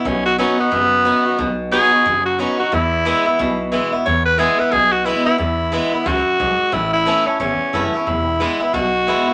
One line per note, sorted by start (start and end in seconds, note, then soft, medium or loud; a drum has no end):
0.05 0.43 B1 loud
0.05 0.70 B2 medium
0.05 0.25 C#4 medium
0.25 0.38 F#4 loud
0.38 0.58 F#3 loud
0.38 0.59 B3 medium
0.38 0.59 C#4 loud
0.38 0.59 D#4 medium
0.38 0.57 F#4 medium
0.58 1.57 B3 loud
0.58 0.72 D#4 medium
0.58 0.71 F#4 medium
0.58 muted upright bass stroke medium
0.72 1.10 F#1 medium
0.72 1.36 F#2 loud
1.05 1.25 F#3 medium
1.05 1.25 B3 medium
1.05 1.25 D#4 medium
1.05 1.24 F#4 medium
1.25 1.39 D#4 soft
1.25 1.38 F#4 medium
1.25 muted upright bass stroke medium
1.38 1.77 B1 loud
1.38 2.03 B2 medium
1.71 1.92 F#3 medium
1.71 1.92 B3 medium
1.71 1.92 D#4 medium
1.71 1.91 F#4 medium
1.71 2.25 G#4 loud
1.92 2.06 D#4 soft
1.92 2.05 F#4 medium
1.92 muted upright bass stroke medium
2.06 2.43 F#1 medium
2.06 2.70 F#2 loud
2.26 2.41 F#4 medium
2.39 2.59 F#3 medium
2.39 2.59 B3 medium
2.39 2.59 C#4 loud
2.39 2.59 D#4 loud
2.39 2.57 F#4 medium
2.58 2.72 D#4 soft
2.58 2.72 F#4 medium
2.58 2.75 F#4 medium
2.58 muted upright bass stroke medium
2.72 3.37 E2 medium
2.72 3.10 E2 medium
2.72 3.70 E4 loud
3.05 3.25 E3 loud
3.05 3.26 G#3 loud
3.05 3.26 B3 loud
3.05 3.24 E4 loud
3.25 3.40 B3 soft
3.25 3.38 E4 medium
3.25 muted upright bass stroke medium
3.39 3.77 B1 medium
3.39 4.03 B2 loud
3.72 3.92 E3 medium
3.72 3.92 G#3 medium
3.72 3.92 B3 medium
3.72 3.91 E4 loud
3.92 4.06 B3 medium
3.92 4.05 E4 medium
3.92 muted upright bass stroke medium
4.06 4.70 E2 medium
4.06 4.44 E2 medium
4.06 4.25 C#5 loud
4.26 4.40 B4 loud
4.38 4.58 E3 medium
4.38 4.59 G#3 loud
4.38 4.59 B3 loud
4.38 4.58 E4 loud
4.38 4.61 G#4 loud
4.59 4.73 B3 medium
4.59 4.72 E4 medium
4.59 4.73 B4 loud
4.59 muted upright bass stroke medium
4.72 5.10 B1 medium
4.72 5.36 B2 loud
4.72 4.94 G#4 loud
4.92 5.07 F#4 loud
5.05 5.25 E3 medium
5.05 5.25 G#3 medium
5.05 5.26 B3 loud
5.05 5.25 E4 loud
5.05 5.24 E4 loud
5.25 5.39 B3 soft
5.25 5.38 E4 medium
5.25 5.38 E4 loud
5.25 muted upright bass stroke medium
5.38 6.03 E2 medium
5.38 5.77 E2 medium
5.38 6.08 E4 medium
5.72 5.92 E3 medium
5.72 5.92 G#3 medium
5.72 5.92 B3 medium
5.72 5.91 E4 loud
5.92 6.06 B3 soft
5.92 6.05 E4 medium
5.92 muted upright bass stroke medium
6.06 6.23 C#2 medium
6.06 6.38 F#2 loud
6.06 6.74 F#4 loud
6.27 muted upright bass stroke medium
6.40 6.57 B1 medium
6.40 6.72 G#2 medium
6.60 muted upright bass stroke medium
6.72 7.10 A1 medium
6.72 7.37 A2 medium
6.72 6.92 E4 medium
6.93 7.28 E4 loud
7.06 7.26 E3 medium
7.06 7.26 A3 medium
7.06 7.26 C#4 loud
7.06 7.24 E4 loud
7.26 7.40 C#4 medium
7.26 7.40 C#4 soft
7.26 7.39 E4 medium
7.26 muted upright bass stroke medium
7.39 7.57 G#1 medium
7.39 8.04 E2 medium
7.39 7.90 C#4 medium
7.61 muted upright bass stroke medium
7.73 7.91 F#1 loud
7.73 7.93 E3 medium
7.73 7.93 A3 medium
7.73 7.93 C#4 medium
7.73 7.93 E4 medium
7.94 8.07 C#4 soft
7.94 8.06 E4 medium
7.94 muted upright bass stroke medium
8.07 8.44 E1 medium
8.07 8.71 E2 medium
8.07 8.75 E4 medium
8.40 8.59 E3 medium
8.40 8.60 G#3 loud
8.40 8.60 B3 loud
8.40 8.59 E4 loud
8.60 8.74 B3 soft
8.60 8.73 E4 medium
8.60 muted upright bass stroke medium
8.73 9.11 B1 medium
8.73 9.34 B2 loud
8.73 9.34 F#4 loud
9.07 9.26 E3 medium
9.07 9.27 G#3 medium
9.07 9.27 B3 medium
9.07 9.26 E4 medium
9.27 9.34 B3 soft
9.27 9.34 E4 medium
9.27 muted upright bass stroke medium